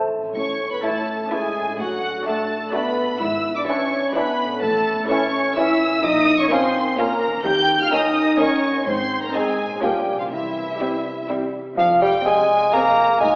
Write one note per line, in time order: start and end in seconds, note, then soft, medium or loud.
0.00 0.15 A2 soft
0.00 0.37 E3 soft
0.00 0.16 C4 soft
0.00 0.24 E4 soft
0.00 3.23 A4 soft
0.00 0.37 C5 soft
0.00 0.11 A5 medium
0.16 1.58 A2 soft
0.16 0.36 C4 soft
0.21 1.73 C#4 soft
0.25 1.75 E4 soft
0.30 1.78 C#5 soft
0.36 0.73 A1 medium
0.36 0.74 A2 medium
0.36 0.69 C#4 medium
0.36 0.69 C#5 medium
0.36 0.69 C#6 medium
0.71 0.83 B3 soft
0.71 0.83 B4 medium
0.71 0.84 B5 medium
0.83 1.19 E3 soft
0.83 0.99 A3 soft
0.83 1.30 A3 medium
0.83 1.19 C#4 soft
0.83 1.19 E4 soft
0.83 1.00 E4 soft
0.83 1.31 A4 medium
0.83 1.31 A5 medium
1.31 1.66 E3 soft
1.31 1.79 G#3 medium
1.31 1.47 A3 soft
1.31 1.66 C#4 medium
1.31 1.48 E4 soft
1.31 1.67 E4 soft
1.31 1.78 G#4 medium
1.31 1.79 G#5 medium
1.60 3.13 A2 soft
1.64 3.16 A3 soft
1.69 3.10 D4 soft
1.73 4.62 D5 soft
1.77 2.16 A1 medium
1.77 2.16 A2 medium
1.77 2.25 F#3 medium
1.77 2.24 F#4 medium
1.77 2.26 F#5 medium
2.26 2.42 A3 soft
2.26 2.61 A3 soft
2.26 2.73 A3 medium
2.26 2.61 D4 soft
2.26 2.43 D4 soft
2.26 2.62 D4 medium
2.26 2.62 F#4 soft
2.26 2.73 A4 medium
2.26 2.73 A5 medium
2.73 3.08 A3 medium
2.73 2.90 A3 soft
2.73 3.20 B3 medium
2.73 3.08 D4 medium
2.73 2.90 D4 soft
2.73 3.10 D4 medium
2.73 3.09 F#4 medium
2.73 3.20 B4 medium
2.73 3.20 B5 medium
3.02 4.55 G#2 soft
3.07 4.57 B3 soft
3.11 4.60 D4 soft
3.16 4.62 B4 soft
3.20 3.59 G#1 medium
3.20 3.58 G#2 medium
3.20 3.55 E4 medium
3.20 3.56 E5 medium
3.20 3.56 E6 medium
3.56 3.62 D4 medium
3.56 3.68 D5 medium
3.56 3.60 D6 medium
3.67 4.03 E3 soft
3.67 3.85 E3 soft
3.67 4.15 C#4 medium
3.67 4.03 D4 medium
3.67 3.85 D4 soft
3.67 4.04 E4 soft
3.67 4.04 B4 soft
3.67 4.15 C#5 medium
3.67 4.14 C#6 medium
4.15 4.50 E3 medium
4.15 4.32 E3 soft
4.15 4.63 B3 medium
4.15 4.50 D4 medium
4.15 4.32 D4 soft
4.15 4.51 E4 medium
4.15 4.62 B4 medium
4.15 4.51 B4 medium
4.15 4.62 B5 medium
4.44 5.97 A2 medium
4.48 5.99 A3 soft
4.52 5.88 C#4 soft
4.57 8.47 C#5 soft
4.62 5.00 A1 medium
4.62 5.00 A2 medium
4.62 5.10 A3 medium
4.62 5.09 A4 medium
4.62 5.09 A5 medium
5.09 5.45 E3 medium
5.09 5.27 E3 soft
5.09 5.56 C#4 medium
5.09 5.45 C#4 medium
5.09 5.26 C#4 medium
5.09 5.45 E4 medium
5.09 5.56 C#5 medium
5.09 5.45 C#5 medium
5.09 5.56 C#6 medium
5.56 5.91 E3 medium
5.56 5.73 E3 soft
5.56 5.92 C#4 medium
5.56 5.73 C#4 medium
5.56 6.03 E4 medium
5.56 5.93 E4 medium
5.56 5.93 C#5 medium
5.56 6.03 E5 medium
5.56 6.03 E6 medium
5.85 7.37 A#2 medium
5.89 7.29 C#4 soft
5.94 7.42 F4 soft
5.99 7.38 A#4 soft
6.03 6.41 A#1 medium
6.03 6.41 A#2 medium
6.03 6.38 D#4 medium
6.03 6.39 D#5 medium
6.03 6.39 D#6 loud
6.38 6.50 C#4 medium
6.38 6.52 C#5 medium
6.38 6.51 C#6 medium
6.49 6.68 F3 medium
6.49 6.86 A#3 medium
6.49 6.96 C4 medium
6.49 6.86 C#4 medium
6.49 6.67 C#4 medium
6.49 6.86 F4 medium
6.49 6.86 A#4 medium
6.49 6.78 C5 medium
6.49 6.98 C6 medium
6.97 7.14 F3 soft
6.97 7.45 A#3 medium
6.97 7.33 A#3 medium
6.97 7.14 C#4 medium
6.97 7.33 C#4 medium
6.97 7.34 F4 medium
6.97 7.44 A#4 medium
6.97 7.34 A#4 medium
6.97 7.45 A#5 medium
7.26 8.79 D#3 medium
7.30 8.81 C#4 soft
7.35 8.77 D#4 soft
7.40 8.86 A#4 soft
7.45 7.82 D#2 medium
7.45 7.79 G4 medium
7.45 7.81 G5 medium
7.45 7.80 G6 loud
7.80 7.86 F4 medium
7.80 7.87 F5 medium
7.80 7.93 F6 medium
7.92 8.08 D#3 medium
7.92 8.27 A#3 medium
7.92 8.27 C#4 medium
7.92 8.09 C#4 medium
7.92 8.39 D#4 medium
7.92 8.28 D#4 medium
7.92 8.28 A#4 medium
7.92 8.39 D#5 medium
7.92 8.40 D#6 medium
8.39 8.56 D#3 soft
8.39 8.74 A#3 medium
8.39 8.74 C#4 medium
8.39 8.55 C#4 medium
8.39 8.88 C#4 medium
8.39 8.75 D#4 medium
8.39 8.75 A#4 medium
8.39 8.86 C#5 medium
8.39 8.86 C#6 medium
8.69 9.75 G#2 soft
8.73 9.77 C4 soft
8.78 9.79 D#4 soft
8.82 9.22 C4 medium
8.82 9.82 G#4 soft
8.86 9.25 G#1 medium
8.86 9.24 G#2 medium
8.86 9.23 C5 medium
8.86 9.22 C6 medium
9.23 9.35 A#3 medium
9.23 9.28 A#4 medium
9.23 9.34 A#5 medium
9.34 9.51 D#3 soft
9.34 9.81 G#3 medium
9.34 9.70 C4 medium
9.34 9.51 C4 medium
9.34 9.70 D#4 medium
9.34 9.81 G#4 medium
9.34 9.70 G#4 medium
9.34 9.82 G#5 medium
9.63 10.23 A#2 soft
9.68 10.25 A#3 soft
9.72 10.28 C#4 soft
9.76 10.30 F4 soft
9.81 10.21 A#1 medium
9.81 10.20 A#2 medium
9.81 9.99 F3 soft
9.81 10.18 G3 medium
9.81 10.18 A#3 medium
9.81 9.98 C#4 soft
9.81 10.18 C#4 medium
9.81 10.19 C#4 medium
9.81 10.19 F4 medium
9.81 10.17 G4 medium
9.81 10.18 G5 medium
10.12 11.70 C3 soft
10.16 10.25 F3 soft
10.16 11.73 G3 soft
10.16 10.24 F4 medium
10.16 10.24 F5 medium
10.21 12.23 C4 soft
10.25 11.77 E4 soft
10.30 10.69 C2 soft
10.30 10.69 C3 medium
10.30 11.27 E3 medium
10.30 11.27 E4 medium
10.30 11.27 E5 medium
10.80 11.17 G3 soft
10.80 10.96 G3 soft
10.80 10.96 C4 soft
10.80 11.17 C4 soft
10.80 11.17 E4 medium
11.29 11.65 G3 soft
11.29 11.45 G3 soft
11.29 11.65 C4 soft
11.29 11.45 C4 soft
11.29 11.66 E4 medium
11.77 12.15 F1 medium
11.77 13.22 F2 medium
11.77 12.16 F2 medium
11.77 12.00 F3 medium
11.77 11.87 F5 medium
11.93 13.23 C3 soft
12.02 12.13 G3 medium
12.02 12.25 G5 medium
12.09 13.03 G#3 soft
12.25 12.75 G#3 medium
12.25 12.87 C4 soft
12.25 12.61 C4 medium
12.25 12.61 G#4 medium
12.25 12.61 F5 soft
12.25 12.74 G#5 medium
12.40 12.71 F4 medium
12.57 13.36 G#4 soft
12.72 13.20 A#3 medium
12.72 13.09 C4 medium
12.72 13.36 F4 medium
12.72 13.09 G#4 medium
12.72 13.09 F5 medium
12.72 13.22 A#5 medium
12.88 13.36 C4 soft
13.04 13.35 G#3 soft
13.20 13.36 G#1 medium
13.20 13.36 G#2 medium
13.20 13.36 G#3 medium
13.20 13.36 G#5 medium